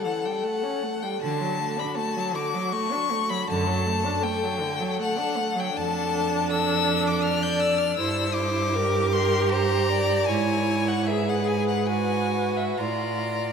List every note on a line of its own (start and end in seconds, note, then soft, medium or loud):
0.00 1.18 A4 medium
0.00 0.26 F#5 loud
0.04 0.26 E3 medium
0.24 0.45 G3 medium
0.24 0.45 G5 medium
0.43 0.64 A3 medium
0.43 1.04 F#5 loud
0.63 0.84 C#4 medium
0.83 1.05 A3 medium
1.02 1.21 G3 medium
1.02 1.21 G5 loud
1.21 1.42 D3 medium
1.21 1.85 D3 medium
1.21 3.44 F#4 medium
1.21 1.81 A5 loud
1.40 1.61 F#3 medium
1.60 1.80 A3 medium
1.78 1.99 D4 medium
1.78 1.96 B5 loud
1.97 2.18 A3 medium
1.97 2.37 A5 loud
2.17 2.36 F#3 medium
2.35 2.56 D3 medium
2.35 2.73 D6 loud
2.54 2.74 F#3 medium
2.72 2.93 A3 medium
2.72 3.31 C#6 loud
2.92 3.13 D4 medium
3.11 3.32 A3 medium
3.29 3.48 F#3 medium
3.29 3.49 B5 loud
3.47 4.12 F#2 loud
3.47 3.69 D3 medium
3.47 5.71 A4 medium
3.47 4.25 A5 loud
3.68 3.88 F#3 medium
3.86 4.07 A3 medium
4.05 4.26 D4 medium
4.23 4.45 A3 medium
4.23 5.00 G5 loud
4.43 4.62 F#3 medium
4.61 4.82 D3 medium
4.80 5.01 F#3 medium
4.99 5.19 A3 medium
4.99 5.61 F#5 loud
5.18 5.38 D4 medium
5.37 5.57 A3 medium
5.55 5.73 F#3 loud
5.60 5.78 G5 loud
5.74 7.95 F2 loud
5.74 7.94 D4 loud
5.74 6.46 A4 loud
5.74 6.51 A5 loud
6.50 7.26 A4 loud
6.50 7.09 E6 loud
7.07 7.24 D6 loud
7.23 7.99 D5 loud
7.23 7.44 F6 loud
7.43 7.61 G6 loud
7.59 7.80 E6 loud
7.78 7.96 F6 loud
7.96 10.25 G2 loud
7.96 8.76 E4 medium
7.96 8.76 C5 loud
7.96 8.35 E6 loud
8.33 9.13 D6 loud
8.74 10.28 G4 loud
8.74 9.11 A#4 loud
9.11 9.53 A#4 loud
9.11 9.51 C6 loud
9.49 9.91 C5 loud
9.49 10.28 A#5 loud
9.89 10.30 D5 loud
10.26 12.76 G#2 loud
10.26 11.09 E4 medium
10.26 11.09 C#5 medium
10.26 10.90 G#5 loud
10.88 11.08 F#5 loud
11.06 11.88 G#4 medium
11.06 11.89 B4 medium
11.06 11.30 E5 loud
11.29 11.49 F#5 loud
11.47 11.67 G#5 loud
11.68 11.88 F#5 loud
11.87 12.80 F#4 medium
11.87 12.80 B4 medium
11.87 12.58 G#5 loud
12.57 12.79 E5 medium
12.77 13.53 A2 medium
12.77 13.53 F4 medium
12.77 13.53 D5 medium
12.77 13.53 A#5 loud